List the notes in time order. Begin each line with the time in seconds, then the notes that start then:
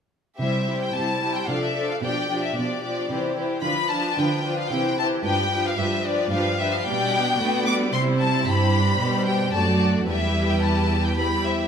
0.39 C3 G3 E4 G4 C5 E5
0.67 G3 E4 G4 C5
0.82 G5
0.94 C3 G3 E4 G4 C5 A5
1.21 G3 E4 G4 C5
1.36 G5
1.48 C3 F3 D4 A4 D5 F5
1.62 E5
1.76 F3 D4 A4 D5
1.90 F5
2.03 B2 F3 D4 G4 D5 G5
2.30 F3 D4 G4 D5
2.43 E5
2.56 B2 F3 D4 G4 D5
2.84 F3 D4 G4 D5
3.10 C3 E3 E4 G4 C5
3.37 E3 E4 G4 C5
3.63 D3 F3 D4 F4 B4 B5
3.90 F3 D4 F4 B4 A5
4.18 D3 F3 D4 F4 B4 G5
4.44 F3 D4 F4 B4
4.59 F5
4.71 C3 E3 E4 G4 C5 G5
4.98 E3 E4 G4 C5 A5
5.24 G2 F3 D4 G4 B4 G5
5.51 F3 D4 G4 B4
5.65 F5
5.77 G2 F3 D4 G4 B4 E5
6.04 F3 D4 G4 B4 D5
6.31 G2 F3 D4 G4 B4 F5
6.58 F3 D4 G4 B4 E5
6.73 F5
6.86 B2 G3 D4 G4 D5 G5
7.13 B3
7.39 A3 B3 F#4 D5
7.67 G3 D6
7.93 C3 E4 C5 C6
8.20 A5
8.46 G2 G3 E4 G4 B5
8.74 D4
9.01 B2 G3 G4
9.27 G5
9.54 F#2 A3 D4 F#4 D5 A5
10.08 E2 G3 E4 G4 B4 E5
10.50 G5
10.63 A5
11.05 G5
11.17 G3 E4 G4 B4 B5
11.44 C5 E5